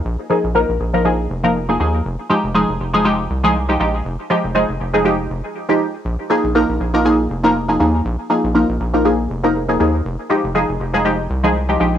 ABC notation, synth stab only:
X:1
M:4/4
L:1/16
Q:"Swing 16ths" 1/4=120
K:Fm
V:1 name="Synth stab"
z2 [F,B,EA] z [F,B,EB]3 [F,B,EB] [F,B,EA]3 [F,B,EB] z [F,B,EA] [F,B,EA] z | z2 [F,A,EG] z [F,A,EA]3 [F,A,EA] [F,A,EG]3 [F,A,EA] z [F,A,EG] [F,A,EG] z | z2 [F,A,EG] z [F,A,EA]3 [F,A,EA] [F,A,EG]3 z2 [F,A,EG] z2 | z2 [F,B,EA] z [F,B,EB]3 [F,B,EB] [F,B,EA]3 [F,B,EB] z [F,B,EA] [F,B,EA] z |
z2 [F,B,EA] z [F,B,EB]3 [F,B,EB] [F,B,EA]3 [F,B,EB] z [F,B,EA] [F,B,EA] z | z2 [F,A,EG] z [F,A,EA]3 [F,A,EA] [F,A,EG]3 [F,A,EA] z [F,A,EG] [F,A,EG] z |]